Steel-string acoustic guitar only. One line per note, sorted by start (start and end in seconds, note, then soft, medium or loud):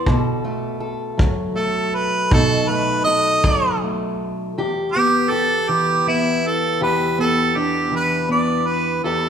0.00 0.10 B3 medium
0.06 2.30 B2 medium
0.06 0.79 A4 medium
0.45 1.54 A3 medium
0.80 3.06 A4 medium
1.18 3.43 F#3 medium
1.56 2.68 A3 medium
2.31 4.56 B2 medium
2.31 4.52 D#4 medium
2.69 3.82 A3 medium
3.07 4.52 A4 medium
3.45 4.52 F#3 medium
3.84 4.58 A3 medium
4.58 6.80 E2 medium
4.58 5.32 G4 medium
4.96 6.07 B3 medium
5.32 6.81 G4 medium
5.69 7.91 E3 medium
6.07 7.18 B3 medium
6.81 9.04 E2 medium
6.81 9.05 G4 medium
7.19 8.28 B3 medium
7.56 9.07 D4 medium
7.91 9.29 E3 medium
8.29 9.29 B3 medium
9.04 9.29 E2 medium
9.04 9.29 G4 medium